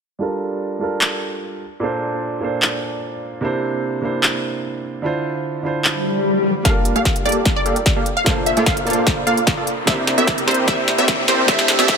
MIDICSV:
0, 0, Header, 1, 8, 480
1, 0, Start_track
1, 0, Tempo, 402685
1, 248, Time_signature, 4, 2, 24, 8
1, 14272, End_track
2, 0, Start_track
2, 0, Title_t, "Synth pluck"
2, 0, Program_c, 0, 84
2, 7927, Note_on_c, 0, 77, 93
2, 8196, Note_off_c, 0, 77, 0
2, 8294, Note_on_c, 0, 77, 89
2, 8560, Note_off_c, 0, 77, 0
2, 8647, Note_on_c, 0, 74, 92
2, 8916, Note_off_c, 0, 74, 0
2, 9016, Note_on_c, 0, 74, 88
2, 9281, Note_off_c, 0, 74, 0
2, 9735, Note_on_c, 0, 77, 92
2, 10000, Note_off_c, 0, 77, 0
2, 10090, Note_on_c, 0, 76, 88
2, 10270, Note_off_c, 0, 76, 0
2, 10330, Note_on_c, 0, 77, 88
2, 10510, Note_off_c, 0, 77, 0
2, 11047, Note_on_c, 0, 77, 88
2, 11229, Note_off_c, 0, 77, 0
2, 11766, Note_on_c, 0, 76, 89
2, 12036, Note_off_c, 0, 76, 0
2, 12132, Note_on_c, 0, 76, 85
2, 12399, Note_off_c, 0, 76, 0
2, 12487, Note_on_c, 0, 72, 84
2, 12709, Note_off_c, 0, 72, 0
2, 12727, Note_on_c, 0, 76, 96
2, 12996, Note_off_c, 0, 76, 0
2, 13094, Note_on_c, 0, 76, 91
2, 13360, Note_off_c, 0, 76, 0
2, 13447, Note_on_c, 0, 72, 89
2, 13669, Note_off_c, 0, 72, 0
2, 13689, Note_on_c, 0, 76, 99
2, 13957, Note_off_c, 0, 76, 0
2, 14053, Note_on_c, 0, 76, 92
2, 14149, Note_off_c, 0, 76, 0
2, 14166, Note_on_c, 0, 76, 100
2, 14272, Note_off_c, 0, 76, 0
2, 14272, End_track
3, 0, Start_track
3, 0, Title_t, "Supersaw synth"
3, 0, Program_c, 1, 81
3, 7927, Note_on_c, 1, 67, 70
3, 7928, Note_on_c, 1, 58, 78
3, 7928, Note_on_c, 1, 69, 71
3, 7928, Note_on_c, 1, 74, 71
3, 7928, Note_on_c, 1, 77, 85
3, 8263, Note_off_c, 1, 58, 0
3, 8263, Note_off_c, 1, 67, 0
3, 8263, Note_off_c, 1, 69, 0
3, 8263, Note_off_c, 1, 74, 0
3, 8263, Note_off_c, 1, 77, 0
3, 8292, Note_on_c, 1, 58, 94
3, 8292, Note_on_c, 1, 67, 84
3, 8292, Note_on_c, 1, 69, 85
3, 8292, Note_on_c, 1, 74, 84
3, 8292, Note_on_c, 1, 77, 103
3, 8619, Note_off_c, 1, 58, 0
3, 8619, Note_off_c, 1, 67, 0
3, 8619, Note_off_c, 1, 74, 0
3, 8620, Note_off_c, 1, 69, 0
3, 8620, Note_off_c, 1, 77, 0
3, 8648, Note_on_c, 1, 58, 99
3, 8648, Note_on_c, 1, 67, 87
3, 8648, Note_on_c, 1, 69, 87
3, 8648, Note_on_c, 1, 74, 87
3, 8648, Note_on_c, 1, 77, 108
3, 9100, Note_off_c, 1, 58, 0
3, 9100, Note_off_c, 1, 67, 0
3, 9100, Note_off_c, 1, 69, 0
3, 9100, Note_off_c, 1, 74, 0
3, 9100, Note_off_c, 1, 77, 0
3, 9127, Note_on_c, 1, 74, 80
3, 9128, Note_on_c, 1, 58, 84
3, 9128, Note_on_c, 1, 67, 78
3, 9128, Note_on_c, 1, 69, 77
3, 9128, Note_on_c, 1, 77, 97
3, 9268, Note_off_c, 1, 67, 0
3, 9268, Note_off_c, 1, 74, 0
3, 9269, Note_off_c, 1, 58, 0
3, 9269, Note_off_c, 1, 69, 0
3, 9269, Note_off_c, 1, 77, 0
3, 9493, Note_on_c, 1, 58, 84
3, 9493, Note_on_c, 1, 67, 77
3, 9493, Note_on_c, 1, 69, 76
3, 9493, Note_on_c, 1, 74, 78
3, 9493, Note_on_c, 1, 77, 92
3, 9594, Note_off_c, 1, 58, 0
3, 9594, Note_off_c, 1, 67, 0
3, 9594, Note_off_c, 1, 69, 0
3, 9594, Note_off_c, 1, 74, 0
3, 9594, Note_off_c, 1, 77, 0
3, 9847, Note_on_c, 1, 58, 77
3, 9848, Note_on_c, 1, 65, 72
3, 9848, Note_on_c, 1, 69, 73
3, 9848, Note_on_c, 1, 74, 71
3, 9848, Note_on_c, 1, 77, 83
3, 10183, Note_off_c, 1, 58, 0
3, 10183, Note_off_c, 1, 65, 0
3, 10183, Note_off_c, 1, 69, 0
3, 10183, Note_off_c, 1, 74, 0
3, 10183, Note_off_c, 1, 77, 0
3, 10213, Note_on_c, 1, 74, 84
3, 10214, Note_on_c, 1, 58, 95
3, 10214, Note_on_c, 1, 65, 87
3, 10214, Note_on_c, 1, 69, 88
3, 10214, Note_on_c, 1, 77, 102
3, 10540, Note_off_c, 1, 58, 0
3, 10540, Note_off_c, 1, 74, 0
3, 10541, Note_off_c, 1, 65, 0
3, 10541, Note_off_c, 1, 69, 0
3, 10541, Note_off_c, 1, 77, 0
3, 10567, Note_on_c, 1, 58, 96
3, 10568, Note_on_c, 1, 65, 91
3, 10568, Note_on_c, 1, 69, 88
3, 10568, Note_on_c, 1, 74, 91
3, 10568, Note_on_c, 1, 77, 108
3, 11020, Note_off_c, 1, 58, 0
3, 11020, Note_off_c, 1, 65, 0
3, 11020, Note_off_c, 1, 69, 0
3, 11020, Note_off_c, 1, 74, 0
3, 11020, Note_off_c, 1, 77, 0
3, 11045, Note_on_c, 1, 74, 80
3, 11046, Note_on_c, 1, 58, 86
3, 11046, Note_on_c, 1, 65, 82
3, 11046, Note_on_c, 1, 69, 79
3, 11046, Note_on_c, 1, 77, 98
3, 11187, Note_off_c, 1, 69, 0
3, 11187, Note_off_c, 1, 74, 0
3, 11188, Note_off_c, 1, 58, 0
3, 11188, Note_off_c, 1, 65, 0
3, 11188, Note_off_c, 1, 77, 0
3, 11413, Note_on_c, 1, 58, 85
3, 11413, Note_on_c, 1, 65, 77
3, 11413, Note_on_c, 1, 69, 75
3, 11413, Note_on_c, 1, 74, 77
3, 11413, Note_on_c, 1, 77, 96
3, 11544, Note_off_c, 1, 58, 0
3, 11544, Note_off_c, 1, 65, 0
3, 11544, Note_off_c, 1, 74, 0
3, 11545, Note_off_c, 1, 69, 0
3, 11545, Note_off_c, 1, 77, 0
3, 11765, Note_on_c, 1, 70, 67
3, 11765, Note_on_c, 1, 74, 67
3, 11765, Note_on_c, 1, 76, 79
3, 11766, Note_on_c, 1, 60, 72
3, 11766, Note_on_c, 1, 67, 68
3, 12102, Note_off_c, 1, 60, 0
3, 12102, Note_off_c, 1, 67, 0
3, 12102, Note_off_c, 1, 70, 0
3, 12102, Note_off_c, 1, 74, 0
3, 12102, Note_off_c, 1, 76, 0
3, 12131, Note_on_c, 1, 60, 87
3, 12131, Note_on_c, 1, 67, 81
3, 12131, Note_on_c, 1, 70, 81
3, 12131, Note_on_c, 1, 74, 80
3, 12131, Note_on_c, 1, 76, 98
3, 12459, Note_off_c, 1, 60, 0
3, 12459, Note_off_c, 1, 67, 0
3, 12459, Note_off_c, 1, 70, 0
3, 12459, Note_off_c, 1, 74, 0
3, 12459, Note_off_c, 1, 76, 0
3, 12485, Note_on_c, 1, 60, 92
3, 12485, Note_on_c, 1, 70, 86
3, 12486, Note_on_c, 1, 67, 84
3, 12486, Note_on_c, 1, 74, 84
3, 12486, Note_on_c, 1, 76, 100
3, 12708, Note_off_c, 1, 60, 0
3, 12708, Note_off_c, 1, 67, 0
3, 12708, Note_off_c, 1, 70, 0
3, 12708, Note_off_c, 1, 74, 0
3, 12708, Note_off_c, 1, 76, 0
3, 12727, Note_on_c, 1, 60, 76
3, 12727, Note_on_c, 1, 67, 70
3, 12727, Note_on_c, 1, 70, 69
3, 13062, Note_off_c, 1, 70, 0
3, 13063, Note_off_c, 1, 60, 0
3, 13063, Note_off_c, 1, 67, 0
3, 13091, Note_on_c, 1, 70, 89
3, 13091, Note_on_c, 1, 76, 104
3, 13092, Note_on_c, 1, 60, 96
3, 13092, Note_on_c, 1, 67, 87
3, 13092, Note_on_c, 1, 74, 88
3, 13419, Note_off_c, 1, 60, 0
3, 13419, Note_off_c, 1, 70, 0
3, 13419, Note_off_c, 1, 74, 0
3, 13419, Note_off_c, 1, 76, 0
3, 13420, Note_off_c, 1, 67, 0
3, 13447, Note_on_c, 1, 60, 96
3, 13447, Note_on_c, 1, 67, 88
3, 13447, Note_on_c, 1, 70, 89
3, 13447, Note_on_c, 1, 74, 89
3, 13447, Note_on_c, 1, 76, 106
3, 13669, Note_off_c, 1, 60, 0
3, 13669, Note_off_c, 1, 67, 0
3, 13669, Note_off_c, 1, 70, 0
3, 13669, Note_off_c, 1, 74, 0
3, 13669, Note_off_c, 1, 76, 0
3, 13687, Note_on_c, 1, 60, 77
3, 13687, Note_on_c, 1, 67, 70
3, 13687, Note_on_c, 1, 74, 71
3, 13688, Note_on_c, 1, 69, 72
3, 13688, Note_on_c, 1, 76, 86
3, 14022, Note_off_c, 1, 60, 0
3, 14023, Note_off_c, 1, 67, 0
3, 14023, Note_off_c, 1, 69, 0
3, 14023, Note_off_c, 1, 74, 0
3, 14023, Note_off_c, 1, 76, 0
3, 14052, Note_on_c, 1, 60, 93
3, 14052, Note_on_c, 1, 67, 90
3, 14052, Note_on_c, 1, 69, 89
3, 14052, Note_on_c, 1, 74, 90
3, 14052, Note_on_c, 1, 76, 105
3, 14149, Note_off_c, 1, 60, 0
3, 14149, Note_off_c, 1, 67, 0
3, 14149, Note_off_c, 1, 69, 0
3, 14149, Note_off_c, 1, 74, 0
3, 14149, Note_off_c, 1, 76, 0
3, 14272, End_track
4, 0, Start_track
4, 0, Title_t, "Grand piano"
4, 0, Program_c, 2, 0
4, 222, Note_on_c, 2, 55, 81
4, 234, Note_on_c, 2, 62, 71
4, 246, Note_on_c, 2, 65, 72
4, 258, Note_on_c, 2, 69, 74
4, 269, Note_on_c, 2, 70, 85
4, 467, Control_c, 2, 64, 127
4, 923, Note_off_c, 2, 55, 0
4, 933, Note_off_c, 2, 62, 0
4, 939, Note_off_c, 2, 65, 0
4, 941, Note_on_c, 2, 55, 67
4, 945, Note_off_c, 2, 69, 0
4, 951, Note_off_c, 2, 70, 0
4, 953, Note_on_c, 2, 62, 60
4, 965, Note_on_c, 2, 65, 63
4, 977, Note_on_c, 2, 69, 62
4, 989, Note_on_c, 2, 70, 75
4, 1901, Note_off_c, 2, 55, 0
4, 1907, Note_off_c, 2, 62, 0
4, 1912, Note_off_c, 2, 65, 0
4, 1919, Note_off_c, 2, 69, 0
4, 1925, Note_off_c, 2, 70, 0
4, 1943, Control_c, 2, 64, 0
4, 2143, Note_on_c, 2, 46, 80
4, 2154, Note_on_c, 2, 58, 76
4, 2166, Note_on_c, 2, 62, 74
4, 2178, Note_on_c, 2, 69, 73
4, 2185, Control_c, 2, 64, 127
4, 2190, Note_on_c, 2, 72, 89
4, 2846, Note_off_c, 2, 46, 0
4, 2854, Note_off_c, 2, 58, 0
4, 2859, Note_off_c, 2, 62, 0
4, 2864, Note_on_c, 2, 46, 68
4, 2866, Note_off_c, 2, 69, 0
4, 2872, Note_off_c, 2, 72, 0
4, 2876, Note_on_c, 2, 58, 64
4, 2887, Note_on_c, 2, 62, 65
4, 2900, Note_on_c, 2, 69, 63
4, 2911, Note_on_c, 2, 72, 76
4, 4048, Note_off_c, 2, 46, 0
4, 4054, Note_off_c, 2, 58, 0
4, 4060, Note_off_c, 2, 62, 0
4, 4061, Note_on_c, 2, 48, 83
4, 4066, Note_off_c, 2, 69, 0
4, 4072, Note_off_c, 2, 72, 0
4, 4074, Note_on_c, 2, 58, 74
4, 4085, Note_on_c, 2, 62, 75
4, 4097, Note_on_c, 2, 64, 74
4, 4105, Control_c, 2, 64, 0
4, 4109, Note_on_c, 2, 72, 92
4, 4291, Control_c, 2, 64, 127
4, 4765, Note_off_c, 2, 48, 0
4, 4773, Note_off_c, 2, 58, 0
4, 4779, Note_off_c, 2, 62, 0
4, 4783, Note_on_c, 2, 48, 72
4, 4785, Note_off_c, 2, 64, 0
4, 4791, Note_off_c, 2, 72, 0
4, 4795, Note_on_c, 2, 58, 65
4, 4807, Note_on_c, 2, 62, 64
4, 4818, Note_on_c, 2, 64, 65
4, 4830, Note_on_c, 2, 72, 78
4, 5968, Note_off_c, 2, 48, 0
4, 5974, Note_off_c, 2, 58, 0
4, 5977, Note_off_c, 2, 62, 0
4, 5983, Note_on_c, 2, 50, 83
4, 5986, Note_off_c, 2, 64, 0
4, 5991, Note_off_c, 2, 72, 0
4, 5995, Note_on_c, 2, 62, 76
4, 6006, Note_on_c, 2, 64, 76
4, 6019, Note_on_c, 2, 65, 75
4, 6024, Control_c, 2, 64, 0
4, 6030, Note_on_c, 2, 72, 91
4, 6259, Control_c, 2, 64, 127
4, 6686, Note_off_c, 2, 50, 0
4, 6694, Note_off_c, 2, 62, 0
4, 6700, Note_off_c, 2, 64, 0
4, 6704, Note_on_c, 2, 50, 70
4, 6706, Note_off_c, 2, 65, 0
4, 6711, Note_off_c, 2, 72, 0
4, 6716, Note_on_c, 2, 62, 65
4, 6728, Note_on_c, 2, 64, 66
4, 6740, Note_on_c, 2, 65, 65
4, 6751, Note_on_c, 2, 72, 80
4, 7888, Note_off_c, 2, 50, 0
4, 7894, Note_off_c, 2, 62, 0
4, 7900, Note_off_c, 2, 64, 0
4, 7904, Note_on_c, 2, 55, 84
4, 7906, Note_off_c, 2, 65, 0
4, 7912, Note_off_c, 2, 72, 0
4, 7915, Note_on_c, 2, 62, 76
4, 7928, Note_on_c, 2, 65, 75
4, 7939, Note_on_c, 2, 69, 76
4, 7944, Control_c, 2, 64, 0
4, 7951, Note_on_c, 2, 70, 94
4, 8117, Control_c, 2, 64, 127
4, 8607, Note_off_c, 2, 55, 0
4, 8614, Note_off_c, 2, 62, 0
4, 8620, Note_off_c, 2, 65, 0
4, 8624, Note_on_c, 2, 55, 72
4, 8626, Note_off_c, 2, 69, 0
4, 8632, Note_off_c, 2, 70, 0
4, 8636, Note_on_c, 2, 62, 65
4, 8648, Note_on_c, 2, 65, 67
4, 8660, Note_on_c, 2, 69, 66
4, 8672, Note_on_c, 2, 58, 79
4, 9582, Note_off_c, 2, 55, 0
4, 9588, Note_off_c, 2, 62, 0
4, 9594, Note_off_c, 2, 65, 0
4, 9600, Note_off_c, 2, 69, 0
4, 9606, Note_off_c, 2, 58, 0
4, 9623, Control_c, 2, 64, 0
4, 9823, Note_on_c, 2, 46, 87
4, 9836, Note_on_c, 2, 58, 79
4, 9848, Note_on_c, 2, 62, 79
4, 9856, Control_c, 2, 64, 127
4, 9860, Note_on_c, 2, 69, 81
4, 9871, Note_on_c, 2, 72, 92
4, 10526, Note_off_c, 2, 46, 0
4, 10534, Note_off_c, 2, 58, 0
4, 10540, Note_off_c, 2, 62, 0
4, 10544, Note_on_c, 2, 46, 74
4, 10546, Note_off_c, 2, 69, 0
4, 10552, Note_off_c, 2, 72, 0
4, 10556, Note_on_c, 2, 58, 69
4, 10568, Note_on_c, 2, 62, 66
4, 10579, Note_on_c, 2, 69, 67
4, 10591, Note_on_c, 2, 72, 83
4, 11728, Note_off_c, 2, 46, 0
4, 11734, Note_off_c, 2, 58, 0
4, 11740, Note_off_c, 2, 62, 0
4, 11744, Note_on_c, 2, 48, 81
4, 11746, Note_off_c, 2, 69, 0
4, 11752, Note_off_c, 2, 72, 0
4, 11756, Note_on_c, 2, 58, 74
4, 11768, Note_on_c, 2, 62, 75
4, 11780, Note_on_c, 2, 64, 75
4, 11785, Control_c, 2, 64, 0
4, 11792, Note_on_c, 2, 72, 89
4, 12024, Control_c, 2, 64, 127
4, 12446, Note_off_c, 2, 48, 0
4, 12454, Note_off_c, 2, 58, 0
4, 12460, Note_off_c, 2, 62, 0
4, 12463, Note_on_c, 2, 48, 70
4, 12466, Note_off_c, 2, 64, 0
4, 12472, Note_off_c, 2, 72, 0
4, 12475, Note_on_c, 2, 58, 64
4, 12487, Note_on_c, 2, 62, 64
4, 12500, Note_on_c, 2, 64, 65
4, 12511, Note_on_c, 2, 72, 78
4, 12686, Note_off_c, 2, 48, 0
4, 12699, Note_off_c, 2, 58, 0
4, 12704, Note_on_c, 2, 48, 82
4, 12709, Note_off_c, 2, 62, 0
4, 12715, Note_off_c, 2, 64, 0
4, 12717, Note_on_c, 2, 58, 77
4, 12721, Note_off_c, 2, 72, 0
4, 12728, Note_on_c, 2, 62, 78
4, 12740, Note_on_c, 2, 64, 76
4, 12752, Note_on_c, 2, 72, 94
4, 13406, Note_off_c, 2, 48, 0
4, 13415, Note_off_c, 2, 58, 0
4, 13420, Note_off_c, 2, 62, 0
4, 13424, Note_on_c, 2, 48, 75
4, 13426, Note_off_c, 2, 64, 0
4, 13433, Note_off_c, 2, 72, 0
4, 13436, Note_on_c, 2, 58, 68
4, 13448, Note_on_c, 2, 62, 68
4, 13459, Note_on_c, 2, 64, 69
4, 13471, Note_on_c, 2, 72, 80
4, 13646, Note_off_c, 2, 48, 0
4, 13663, Note_off_c, 2, 58, 0
4, 13664, Note_on_c, 2, 48, 91
4, 13669, Note_off_c, 2, 62, 0
4, 13675, Note_off_c, 2, 64, 0
4, 13676, Note_on_c, 2, 57, 81
4, 13681, Note_off_c, 2, 72, 0
4, 13687, Note_on_c, 2, 62, 83
4, 13699, Note_on_c, 2, 64, 82
4, 13703, Control_c, 2, 64, 0
4, 13712, Note_on_c, 2, 72, 99
4, 13910, Control_c, 2, 64, 127
4, 14126, Note_off_c, 2, 48, 0
4, 14138, Note_off_c, 2, 57, 0
4, 14144, Note_on_c, 2, 48, 92
4, 14149, Note_off_c, 2, 62, 0
4, 14155, Note_off_c, 2, 64, 0
4, 14155, Note_on_c, 2, 57, 84
4, 14161, Note_off_c, 2, 72, 0
4, 14167, Note_on_c, 2, 62, 85
4, 14179, Note_on_c, 2, 64, 81
4, 14191, Note_on_c, 2, 72, 100
4, 14272, Note_off_c, 2, 48, 0
4, 14272, Note_off_c, 2, 57, 0
4, 14272, Note_off_c, 2, 62, 0
4, 14272, Note_off_c, 2, 64, 0
4, 14272, Note_off_c, 2, 72, 0
4, 14272, End_track
5, 0, Start_track
5, 0, Title_t, "Noise sweep"
5, 0, Program_c, 3, 103
5, 13687, Note_on_c, 3, 60, 77
5, 14272, Note_off_c, 3, 60, 0
5, 14272, End_track
6, 0, Start_track
6, 0, Title_t, "Riser"
6, 0, Program_c, 4, 103
6, 7927, Note_on_c, 4, 60, 74
6, 14272, Note_off_c, 4, 60, 0
6, 14272, End_track
7, 0, Start_track
7, 0, Title_t, "Swell"
7, 0, Program_c, 5, 103
7, 6967, Note_on_c, 5, 60, 69
7, 7927, Note_off_c, 5, 60, 0
7, 14272, End_track
8, 0, Start_track
8, 0, Title_t, "Drums"
8, 1207, Note_on_c, 9, 39, 83
8, 1326, Note_off_c, 9, 39, 0
8, 3125, Note_on_c, 9, 39, 88
8, 3244, Note_off_c, 9, 39, 0
8, 5045, Note_on_c, 9, 39, 85
8, 5164, Note_off_c, 9, 39, 0
8, 6967, Note_on_c, 9, 39, 86
8, 7086, Note_off_c, 9, 39, 0
8, 7927, Note_on_c, 9, 36, 94
8, 7927, Note_on_c, 9, 38, 45
8, 7927, Note_on_c, 9, 42, 80
8, 8046, Note_off_c, 9, 36, 0
8, 8046, Note_off_c, 9, 38, 0
8, 8046, Note_off_c, 9, 42, 0
8, 8167, Note_on_c, 9, 42, 65
8, 8287, Note_off_c, 9, 42, 0
8, 8293, Note_on_c, 9, 42, 61
8, 8407, Note_on_c, 9, 36, 94
8, 8408, Note_off_c, 9, 42, 0
8, 8408, Note_on_c, 9, 38, 49
8, 8408, Note_on_c, 9, 42, 78
8, 8526, Note_off_c, 9, 36, 0
8, 8527, Note_off_c, 9, 38, 0
8, 8527, Note_off_c, 9, 42, 0
8, 8533, Note_on_c, 9, 42, 60
8, 8648, Note_off_c, 9, 42, 0
8, 8648, Note_on_c, 9, 42, 47
8, 8689, Note_off_c, 9, 42, 0
8, 8689, Note_on_c, 9, 42, 62
8, 8727, Note_off_c, 9, 42, 0
8, 8727, Note_on_c, 9, 42, 74
8, 8846, Note_off_c, 9, 42, 0
8, 8886, Note_on_c, 9, 38, 48
8, 8886, Note_on_c, 9, 42, 76
8, 8887, Note_on_c, 9, 36, 95
8, 9005, Note_off_c, 9, 38, 0
8, 9005, Note_off_c, 9, 42, 0
8, 9006, Note_off_c, 9, 36, 0
8, 9127, Note_on_c, 9, 42, 62
8, 9247, Note_off_c, 9, 42, 0
8, 9252, Note_on_c, 9, 42, 64
8, 9367, Note_off_c, 9, 42, 0
8, 9367, Note_on_c, 9, 36, 92
8, 9367, Note_on_c, 9, 38, 51
8, 9367, Note_on_c, 9, 42, 74
8, 9486, Note_off_c, 9, 36, 0
8, 9487, Note_off_c, 9, 38, 0
8, 9487, Note_off_c, 9, 42, 0
8, 9608, Note_on_c, 9, 42, 65
8, 9727, Note_off_c, 9, 42, 0
8, 9847, Note_on_c, 9, 36, 93
8, 9847, Note_on_c, 9, 38, 59
8, 9847, Note_on_c, 9, 42, 77
8, 9966, Note_off_c, 9, 36, 0
8, 9967, Note_off_c, 9, 38, 0
8, 9967, Note_off_c, 9, 42, 0
8, 10088, Note_on_c, 9, 42, 65
8, 10207, Note_off_c, 9, 42, 0
8, 10213, Note_on_c, 9, 42, 62
8, 10327, Note_off_c, 9, 42, 0
8, 10327, Note_on_c, 9, 36, 97
8, 10327, Note_on_c, 9, 38, 62
8, 10327, Note_on_c, 9, 42, 77
8, 10446, Note_off_c, 9, 36, 0
8, 10446, Note_off_c, 9, 38, 0
8, 10446, Note_off_c, 9, 42, 0
8, 10453, Note_on_c, 9, 42, 60
8, 10568, Note_off_c, 9, 42, 0
8, 10568, Note_on_c, 9, 42, 46
8, 10609, Note_off_c, 9, 42, 0
8, 10609, Note_on_c, 9, 42, 62
8, 10648, Note_off_c, 9, 42, 0
8, 10648, Note_on_c, 9, 42, 76
8, 10767, Note_off_c, 9, 42, 0
8, 10806, Note_on_c, 9, 36, 95
8, 10807, Note_on_c, 9, 38, 64
8, 10807, Note_on_c, 9, 42, 76
8, 10926, Note_off_c, 9, 36, 0
8, 10927, Note_off_c, 9, 38, 0
8, 10927, Note_off_c, 9, 42, 0
8, 11048, Note_on_c, 9, 42, 63
8, 11167, Note_off_c, 9, 42, 0
8, 11174, Note_on_c, 9, 42, 63
8, 11286, Note_on_c, 9, 36, 96
8, 11289, Note_off_c, 9, 42, 0
8, 11289, Note_on_c, 9, 38, 68
8, 11289, Note_on_c, 9, 42, 77
8, 11406, Note_off_c, 9, 36, 0
8, 11408, Note_off_c, 9, 38, 0
8, 11408, Note_off_c, 9, 42, 0
8, 11528, Note_on_c, 9, 42, 65
8, 11647, Note_off_c, 9, 42, 0
8, 11766, Note_on_c, 9, 36, 97
8, 11768, Note_on_c, 9, 38, 75
8, 11768, Note_on_c, 9, 42, 76
8, 11886, Note_off_c, 9, 36, 0
8, 11887, Note_off_c, 9, 38, 0
8, 11887, Note_off_c, 9, 42, 0
8, 12008, Note_on_c, 9, 38, 74
8, 12008, Note_on_c, 9, 42, 63
8, 12127, Note_off_c, 9, 38, 0
8, 12127, Note_off_c, 9, 42, 0
8, 12134, Note_on_c, 9, 42, 61
8, 12246, Note_on_c, 9, 36, 95
8, 12248, Note_off_c, 9, 42, 0
8, 12248, Note_on_c, 9, 38, 80
8, 12248, Note_on_c, 9, 42, 76
8, 12366, Note_off_c, 9, 36, 0
8, 12367, Note_off_c, 9, 38, 0
8, 12367, Note_off_c, 9, 42, 0
8, 12372, Note_on_c, 9, 42, 59
8, 12487, Note_off_c, 9, 42, 0
8, 12487, Note_on_c, 9, 38, 77
8, 12487, Note_on_c, 9, 42, 45
8, 12528, Note_off_c, 9, 42, 0
8, 12528, Note_on_c, 9, 42, 60
8, 12568, Note_off_c, 9, 42, 0
8, 12568, Note_on_c, 9, 42, 73
8, 12607, Note_off_c, 9, 38, 0
8, 12687, Note_off_c, 9, 42, 0
8, 12726, Note_on_c, 9, 36, 96
8, 12726, Note_on_c, 9, 38, 79
8, 12726, Note_on_c, 9, 42, 74
8, 12845, Note_off_c, 9, 38, 0
8, 12845, Note_off_c, 9, 42, 0
8, 12846, Note_off_c, 9, 36, 0
8, 12967, Note_on_c, 9, 38, 80
8, 12967, Note_on_c, 9, 42, 60
8, 13086, Note_off_c, 9, 38, 0
8, 13086, Note_off_c, 9, 42, 0
8, 13093, Note_on_c, 9, 42, 63
8, 13207, Note_off_c, 9, 42, 0
8, 13207, Note_on_c, 9, 36, 94
8, 13207, Note_on_c, 9, 38, 86
8, 13207, Note_on_c, 9, 42, 77
8, 13326, Note_off_c, 9, 36, 0
8, 13326, Note_off_c, 9, 38, 0
8, 13326, Note_off_c, 9, 42, 0
8, 13446, Note_on_c, 9, 38, 88
8, 13446, Note_on_c, 9, 42, 65
8, 13566, Note_off_c, 9, 38, 0
8, 13566, Note_off_c, 9, 42, 0
8, 13686, Note_on_c, 9, 38, 92
8, 13686, Note_on_c, 9, 42, 76
8, 13687, Note_on_c, 9, 36, 98
8, 13805, Note_off_c, 9, 38, 0
8, 13805, Note_off_c, 9, 42, 0
8, 13806, Note_off_c, 9, 36, 0
8, 13811, Note_on_c, 9, 38, 80
8, 13926, Note_off_c, 9, 38, 0
8, 13926, Note_on_c, 9, 38, 96
8, 13926, Note_on_c, 9, 42, 65
8, 14045, Note_off_c, 9, 38, 0
8, 14045, Note_off_c, 9, 42, 0
8, 14051, Note_on_c, 9, 38, 80
8, 14051, Note_on_c, 9, 42, 60
8, 14165, Note_off_c, 9, 38, 0
8, 14165, Note_off_c, 9, 42, 0
8, 14165, Note_on_c, 9, 38, 101
8, 14165, Note_on_c, 9, 42, 78
8, 14166, Note_on_c, 9, 36, 99
8, 14272, Note_off_c, 9, 36, 0
8, 14272, Note_off_c, 9, 38, 0
8, 14272, Note_off_c, 9, 42, 0
8, 14272, End_track
0, 0, End_of_file